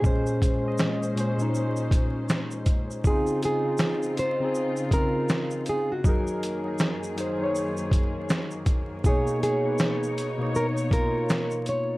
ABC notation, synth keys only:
X:1
M:4/4
L:1/16
Q:"Swing 16ths" 1/4=80
K:Db
V:1 name="Synth keys"
[B,,A,Dc]2 z [B,,A,De]2 z [B,,A,Dc] [B,,A,DE]6- [B,,A,DE] z2 | [D,CEF]2 z [D,CEF]3 z [D,CEA]2 z [D,CEF]4- [D,CEF] z | [G,EAB]2 z [G,EAB]2 z [G,EAc] [G,EAd]6- [G,EAd] z2 | [_C,B,Ed]2 z [C,B,E_cd]3 z [C,B,Ed]2 z [C,B,EF]4- [C,B,EF] z |]